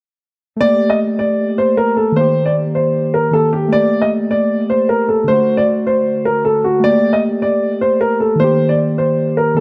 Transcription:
0.56 2.11 A3 medium
0.61 2.13 A#3 medium
0.61 0.88 D5 loud
0.65 2.16 G4 medium
0.90 0.98 D#5 medium
1.19 1.56 D5 medium
1.58 1.74 C5 medium
1.77 1.94 A#4 medium
1.97 2.13 A4 medium
2.12 3.29 D#3 medium
2.16 3.31 A#3 medium
2.16 2.44 C5 loud
2.21 3.33 G4 medium
2.46 2.54 D5 medium
2.75 3.11 C5 medium
3.14 3.30 A#4 medium
3.31 3.71 D#3 medium
3.31 3.71 A#3 soft
3.31 3.50 A4 medium
3.35 3.73 G4 medium
3.53 3.69 G4 medium
3.68 5.23 A3 medium
3.72 5.25 A#3 medium
3.72 4.00 D5 loud
3.77 5.27 G4 medium
4.02 4.10 D#5 medium
4.31 4.67 D5 medium
4.70 4.86 C5 medium
4.89 5.05 A#4 medium
5.08 5.25 A4 medium
5.24 6.79 D3 medium
5.24 5.55 C5 medium
5.28 6.79 A3 medium
5.33 6.83 F#4 medium
5.57 5.65 D5 medium
5.87 6.23 C5 medium
6.25 6.42 A#4 medium
6.45 6.61 A4 medium
6.64 6.81 F#4 medium
6.80 8.35 A3 medium
6.84 8.37 A#3 medium
6.84 7.11 D5 loud
6.88 8.39 G4 medium
7.13 7.21 D#5 medium
7.42 7.79 D5 medium
7.81 7.98 C5 medium
8.01 8.17 A#4 medium
8.20 8.37 A4 medium
8.36 9.52 D#3 medium
8.40 9.54 A#3 medium
8.40 8.67 C5 loud
8.44 9.56 G4 medium
8.69 8.77 D5 medium
8.98 9.35 C5 medium
9.37 9.54 A#4 medium
9.55 9.60 D#3 medium
9.55 9.60 A#3 soft
9.55 9.60 A4 medium

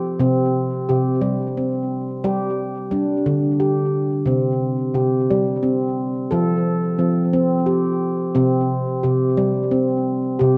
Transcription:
0.00 0.15 C4 medium
0.00 0.20 G4 medium
0.19 0.84 C3 loud
0.19 0.88 C4 medium
0.89 1.19 C3 medium
0.89 1.56 G4 medium
1.21 2.20 G3 medium
1.57 2.24 C4 medium
2.24 2.88 G3 loud
2.24 2.92 G4 medium
2.91 3.22 G3 medium
2.91 3.60 D4 medium
3.26 4.24 D3 medium
3.60 4.28 G4 medium
4.26 4.90 C3 medium
4.26 4.95 C4 medium
4.94 5.25 C3 medium
4.94 5.63 G4 medium
5.31 6.28 G3 loud
5.63 6.31 C4 medium
6.31 6.96 F3 loud
6.31 6.99 A4 medium
6.98 7.30 F3 medium
6.98 7.32 C4 medium
7.33 8.31 C4 medium
7.66 8.35 G4 medium
8.35 8.99 C3 loud
8.35 9.03 C4 medium
9.03 9.34 C3 loud
9.03 9.71 G4 medium
9.37 10.35 G3 loud
9.71 10.39 C4 medium
10.39 10.58 C3 loud
10.39 10.58 G4 medium

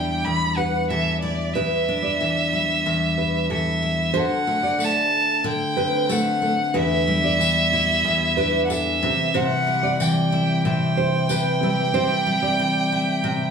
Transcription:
0.00 0.24 E2 medium
0.00 0.89 E3 medium
0.00 2.52 G3 medium
0.00 1.87 D4 soft
0.00 1.21 E4 medium
0.00 0.26 G5 medium
0.25 1.54 E2 medium
0.25 0.58 B5 loud
0.57 0.89 B4 medium
0.57 0.89 F#5 medium
0.90 2.19 E3 medium
0.90 1.36 A4 medium
0.90 1.20 E5 medium
1.21 1.55 E4 medium
1.21 1.55 D5 medium
1.54 2.85 E2 medium
1.54 3.81 E4 medium
1.54 1.71 B4 medium
1.54 3.50 E5 medium
1.88 5.38 D4 medium
2.03 2.49 D5 medium
2.21 3.49 E3 medium
2.53 4.22 G3 medium
2.86 4.22 E2 medium
3.18 3.49 B4 medium
3.50 4.13 E3 medium
3.50 3.96 A4 medium
3.50 4.20 E5 medium
3.82 4.14 E4 medium
4.13 5.44 D3 medium
4.13 6.70 D4 medium
4.13 5.13 F#4 medium
4.13 6.71 A4 soft
4.13 4.30 C5 medium
4.13 6.71 C5 medium
4.17 4.85 F#5 medium
4.17 6.72 A5 medium
4.47 4.78 A3 medium
4.63 5.09 D5 medium
4.79 6.08 A3 medium
4.79 tambourine medium
4.84 5.47 A5 medium
5.44 7.39 D3 medium
5.44 6.14 G5 medium
5.77 6.82 C4 medium
5.77 6.08 B4 medium
6.09 6.41 A3 medium
6.09 6.56 A4 medium
6.09 6.78 F#5 medium
6.09 tambourine medium
6.42 6.81 A3 medium
6.73 8.03 E2 medium
6.73 8.98 D4 medium
6.73 7.73 E4 medium
6.73 8.98 G4 medium
6.73 6.90 B4 medium
6.73 8.99 B4 soft
6.73 8.99 E5 medium
6.73 8.64 E5 loud
7.07 9.67 G3 medium
7.24 7.70 D5 medium
7.40 8.69 E3 medium
7.40 tambourine medium
7.73 9.35 E4 medium
8.05 9.09 E2 medium
8.37 9.09 D4 medium
8.37 8.68 B4 medium
8.65 8.74 F#5 medium
8.70 10.00 E3 medium
8.70 9.16 A4 medium
8.70 9.38 E5 medium
8.70 tambourine medium
9.01 9.33 C3 medium
9.01 11.58 C4 medium
9.01 11.58 G4 medium
9.01 11.59 B4 medium
9.06 11.60 E5 medium
9.34 10.64 C3 medium
9.34 10.32 E4 medium
9.34 9.50 C5 medium
9.34 10.03 F#5 loud
9.67 11.62 G3 medium
9.83 10.29 D5 medium
10.00 11.30 E3 medium
10.00 10.66 G5 medium
10.00 tambourine medium
10.32 11.94 E4 medium
10.65 11.93 C3 medium
10.65 13.51 G5 loud
10.97 11.28 C5 medium
11.29 12.59 E3 medium
11.29 11.76 B4 medium
11.29 tambourine medium
11.60 12.26 G3 medium
11.60 13.51 C4 medium
11.60 13.51 G4 medium
11.60 13.51 B4 medium
11.64 13.51 E5 medium
11.94 13.23 C3 medium
11.94 12.92 E4 medium
11.94 12.10 C5 medium
12.27 13.51 G3 medium
12.43 12.89 D5 medium
12.59 13.51 E3 medium
12.92 13.51 E4 medium
13.24 13.51 C3 medium

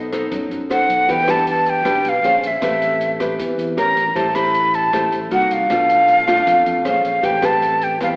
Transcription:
0.00 0.27 B1 medium
0.00 0.29 B3 medium
0.13 0.67 D#4 medium
0.13 0.67 A4 medium
0.13 0.68 C5 medium
0.13 cross-stick medium
0.13 closed hi-hat soft
0.32 0.49 F#2 medium
0.32 1.06 F#3 medium
0.32 kick medium
0.32 closed hi-hat medium
0.51 0.86 F#2 medium
0.51 closed hi-hat soft
0.70 1.07 D#4 medium
0.70 1.07 A4 soft
0.70 1.07 C5 medium
0.70 1.13 F#5 medium
0.70 cross-stick medium
0.70 closed hi-hat soft
0.89 1.07 B1 medium
0.89 closed hi-hat soft
1.08 1.81 E2 medium
1.08 1.83 E3 medium
1.08 1.20 D4 medium
1.08 1.20 G4 medium
1.08 1.20 B4 medium
1.08 1.32 G5 loud
1.08 kick medium
1.08 closed hi-hat medium
1.28 1.82 D4 medium
1.28 1.82 G4 medium
1.28 1.82 B4 medium
1.28 1.48 A5 medium
1.28 cross-stick medium
1.28 closed hi-hat soft
1.47 1.71 A5 medium
1.47 closed hi-hat soft
1.66 2.10 G5 medium
1.66 closed hi-hat soft
1.84 2.03 B1 medium
1.84 2.21 B2 medium
1.84 2.11 D4 medium
1.84 2.11 G4 medium
1.84 2.11 B4 medium
1.84 kick medium
1.84 cross-stick medium
1.84 closed hi-hat medium
2.04 2.22 B1 medium
2.04 closed hi-hat soft
2.09 2.49 F5 medium
2.23 2.41 A#1 medium
2.23 2.49 C#4 medium
2.23 2.49 G#4 soft
2.23 2.49 C5 medium
2.23 closed hi-hat soft
2.42 2.60 A#1 medium
2.42 closed hi-hat soft
2.47 3.22 E5 medium
2.61 3.35 A1 medium
2.61 3.37 A3 medium
2.61 3.17 C4 soft
2.61 3.17 G4 medium
2.61 3.17 B4 medium
2.61 kick medium
2.61 cross-stick medium
2.61 closed hi-hat medium
2.82 closed hi-hat soft
3.01 closed hi-hat soft
3.20 3.74 C4 medium
3.20 3.74 G4 medium
3.20 3.75 B4 medium
3.20 kick soft
3.20 cross-stick medium
3.20 closed hi-hat soft
3.38 3.57 E2 medium
3.38 3.75 E3 soft
3.38 kick medium
3.38 closed hi-hat medium
3.58 3.76 E2 medium
3.58 closed hi-hat soft
3.77 3.95 A1 medium
3.77 4.03 C#4 medium
3.77 4.03 G4 medium
3.77 4.03 A#4 medium
3.77 4.17 A#5 medium
3.77 cross-stick medium
3.77 closed hi-hat soft
3.97 4.15 A1 medium
3.97 kick soft
3.97 closed hi-hat soft
4.15 4.89 A1 medium
4.15 4.91 A3 soft
4.15 4.27 E4 medium
4.15 4.27 G4 medium
4.15 4.27 C5 medium
4.15 4.36 A5 medium
4.15 kick medium
4.15 closed hi-hat medium
4.35 4.90 E4 medium
4.35 4.90 G4 medium
4.35 4.90 C5 medium
4.35 4.76 B5 loud
4.35 cross-stick medium
4.35 closed hi-hat soft
4.54 closed hi-hat soft
4.74 5.13 A5 medium
4.74 closed hi-hat soft
4.92 5.11 A1 medium
4.92 5.29 A3 medium
4.92 5.18 E4 soft
4.92 5.19 G4 medium
4.92 5.19 C5 medium
4.92 kick medium
4.92 cross-stick medium
4.92 closed hi-hat medium
5.12 5.30 A1 medium
5.12 closed hi-hat soft
5.31 5.50 C2 medium
5.31 5.66 A#3 medium
5.31 5.67 D#4 soft
5.31 5.67 F#4 medium
5.31 5.54 F#5 medium
5.31 closed hi-hat soft
5.51 5.69 C2 medium
5.51 6.86 F5 medium
5.51 closed hi-hat soft
5.70 6.43 B1 medium
5.70 6.45 B2 medium
5.70 6.24 A3 medium
5.70 6.24 D4 soft
5.70 6.25 F4 medium
5.70 kick medium
5.70 cross-stick medium
5.70 closed hi-hat medium
5.90 closed hi-hat soft
6.08 closed hi-hat soft
6.27 6.82 A3 medium
6.27 6.82 D4 medium
6.27 6.82 F4 medium
6.27 cross-stick medium
6.27 closed hi-hat soft
6.46 6.65 F2 medium
6.46 6.83 B2 medium
6.46 kick medium
6.46 closed hi-hat medium
6.66 6.84 F2 medium
6.66 closed hi-hat soft
6.85 7.03 A#1 medium
6.85 7.22 C#4 soft
6.85 7.22 G#4 soft
6.85 7.22 C5 medium
6.85 7.04 F5 medium
6.85 cross-stick medium
6.85 closed hi-hat soft
7.05 7.22 A#1 medium
7.05 7.26 F5 medium
7.05 closed hi-hat soft
7.22 7.96 A1 medium
7.22 7.98 A3 soft
7.22 7.39 C4 soft
7.22 7.39 G4 medium
7.22 7.40 B4 medium
7.22 7.47 G5 medium
7.22 kick medium
7.22 closed hi-hat medium
7.42 7.97 C4 medium
7.42 7.97 G4 medium
7.42 7.97 B4 medium
7.42 7.85 A5 medium
7.42 cross-stick medium
7.42 closed hi-hat soft
7.62 closed hi-hat soft
7.82 8.02 G5 medium
7.82 closed hi-hat soft
8.00 8.16 E2 medium
8.00 8.16 E3 medium
8.00 8.16 C4 soft
8.00 8.16 G4 medium
8.00 8.16 B4 medium
8.00 8.09 F5 medium
8.00 kick medium
8.00 cross-stick medium
8.00 closed hi-hat medium

